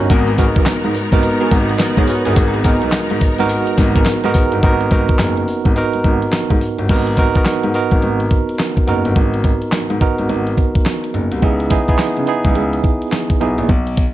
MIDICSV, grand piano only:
0, 0, Header, 1, 2, 480
1, 0, Start_track
1, 0, Key_signature, 5, "minor"
1, 0, Tempo, 566038
1, 88, Time_signature, 4, 2, 24, 8
1, 11990, End_track
2, 0, Start_track
2, 0, Title_t, "Grand piano"
2, 0, Program_c, 0, 0
2, 85, Note_on_c, 0, 32, 121
2, 362, Note_off_c, 0, 32, 0
2, 476, Note_on_c, 0, 35, 88
2, 541, Note_off_c, 0, 35, 0
2, 564, Note_on_c, 0, 44, 27
2, 625, Note_off_c, 0, 44, 0
2, 715, Note_on_c, 0, 44, 96
2, 780, Note_off_c, 0, 44, 0
2, 951, Note_on_c, 0, 32, 91
2, 1018, Note_off_c, 0, 32, 0
2, 1283, Note_on_c, 0, 32, 100
2, 1455, Note_off_c, 0, 32, 0
2, 1671, Note_on_c, 0, 44, 96
2, 1738, Note_off_c, 0, 44, 0
2, 1918, Note_on_c, 0, 31, 101
2, 1982, Note_off_c, 0, 31, 0
2, 2006, Note_on_c, 0, 32, 120
2, 2283, Note_off_c, 0, 32, 0
2, 2396, Note_on_c, 0, 35, 93
2, 2461, Note_off_c, 0, 35, 0
2, 2487, Note_on_c, 0, 44, 28
2, 2547, Note_off_c, 0, 44, 0
2, 2635, Note_on_c, 0, 44, 105
2, 2701, Note_off_c, 0, 44, 0
2, 2878, Note_on_c, 0, 32, 95
2, 2942, Note_off_c, 0, 32, 0
2, 3205, Note_on_c, 0, 32, 109
2, 3377, Note_off_c, 0, 32, 0
2, 3597, Note_on_c, 0, 44, 95
2, 3661, Note_off_c, 0, 44, 0
2, 3840, Note_on_c, 0, 31, 92
2, 3903, Note_off_c, 0, 31, 0
2, 3926, Note_on_c, 0, 32, 103
2, 4097, Note_off_c, 0, 32, 0
2, 4166, Note_on_c, 0, 32, 95
2, 4272, Note_off_c, 0, 32, 0
2, 4409, Note_on_c, 0, 30, 93
2, 4579, Note_off_c, 0, 30, 0
2, 4793, Note_on_c, 0, 32, 89
2, 4859, Note_off_c, 0, 32, 0
2, 5039, Note_on_c, 0, 32, 26
2, 5075, Note_off_c, 0, 32, 0
2, 5125, Note_on_c, 0, 32, 89
2, 5232, Note_off_c, 0, 32, 0
2, 5516, Note_on_c, 0, 44, 85
2, 5581, Note_off_c, 0, 44, 0
2, 5753, Note_on_c, 0, 31, 91
2, 5819, Note_off_c, 0, 31, 0
2, 5844, Note_on_c, 0, 32, 110
2, 6122, Note_off_c, 0, 32, 0
2, 6325, Note_on_c, 0, 44, 27
2, 6386, Note_off_c, 0, 44, 0
2, 6476, Note_on_c, 0, 44, 92
2, 6541, Note_off_c, 0, 44, 0
2, 6712, Note_on_c, 0, 32, 82
2, 6779, Note_off_c, 0, 32, 0
2, 6809, Note_on_c, 0, 32, 91
2, 6979, Note_off_c, 0, 32, 0
2, 7528, Note_on_c, 0, 30, 89
2, 7634, Note_off_c, 0, 30, 0
2, 7678, Note_on_c, 0, 31, 90
2, 7742, Note_off_c, 0, 31, 0
2, 7767, Note_on_c, 0, 32, 98
2, 8043, Note_off_c, 0, 32, 0
2, 8250, Note_on_c, 0, 44, 26
2, 8309, Note_off_c, 0, 44, 0
2, 8395, Note_on_c, 0, 44, 92
2, 8461, Note_off_c, 0, 44, 0
2, 8639, Note_on_c, 0, 32, 80
2, 8703, Note_off_c, 0, 32, 0
2, 8726, Note_on_c, 0, 32, 93
2, 8897, Note_off_c, 0, 32, 0
2, 9447, Note_on_c, 0, 30, 90
2, 9553, Note_off_c, 0, 30, 0
2, 9598, Note_on_c, 0, 36, 85
2, 9662, Note_off_c, 0, 36, 0
2, 9688, Note_on_c, 0, 37, 102
2, 9964, Note_off_c, 0, 37, 0
2, 10168, Note_on_c, 0, 49, 26
2, 10228, Note_off_c, 0, 49, 0
2, 10320, Note_on_c, 0, 49, 91
2, 10384, Note_off_c, 0, 49, 0
2, 10554, Note_on_c, 0, 37, 89
2, 10620, Note_off_c, 0, 37, 0
2, 10647, Note_on_c, 0, 37, 90
2, 10818, Note_off_c, 0, 37, 0
2, 11368, Note_on_c, 0, 35, 80
2, 11474, Note_off_c, 0, 35, 0
2, 11516, Note_on_c, 0, 34, 84
2, 11581, Note_off_c, 0, 34, 0
2, 11609, Note_on_c, 0, 35, 101
2, 11885, Note_off_c, 0, 35, 0
2, 11990, End_track
0, 0, End_of_file